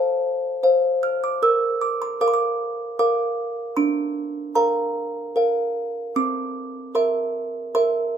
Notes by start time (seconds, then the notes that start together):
Already playing: C5 F5
0.63 C5 F5
1.03 F6
1.24 D6
1.43 A#4 E6
1.81 D6
2.02 C6
2.21 A#4 F5 D6
2.28 C6
2.34 D6
2.99 A#4 F5 D6
3.77 D4 C6
4.55 A#4 F5 A#5
5.36 A#4 F5
6.16 C4 D6
6.95 A#4 E5 C6
7.75 A#4 E5 C6